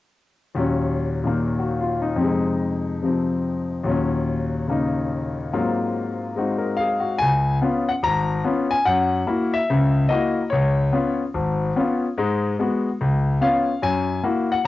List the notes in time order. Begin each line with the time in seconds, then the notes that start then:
0.55 D#2 A#2 F#3 C#4
1.23 A#2 D#3 A#3
1.59 F#4
1.81 F4
2.02 D#4
2.16 F2 C3
2.23 G#3 D#4
3.03 C3 F3 C4
3.84 D#2 A#2 F#3
3.89 C#4
4.68 C#3 A#3 D#4
5.53 G#2 F#3 A#3 C4 F4
6.36 G#3 C4 D#4 F#4
6.58 A#4
6.77 G#4 F5
7.00 F#4
7.19 C#2 G#5
7.62 B3 C#4 F4
7.89 F#5
8.03 G#1 A#5
8.44 B3 C#4 F4
8.71 G#5
8.85 F#2 F#5
9.27 A#3 E4 F#4
9.53 E5
9.70 C#2 C#3
10.09 A#3 E4 F#4 D#5
10.50 C#2 C#5
10.93 B3 C#4 F4
11.34 G#1
11.76 B3 C#4 F4
12.18 G#2 G#3
12.59 G#3 B3 F#4
13.01 C#2
13.41 B3 C#4 F4 F5
13.82 F#2 G#5
14.24 A#3 E4 F#4
14.52 F#5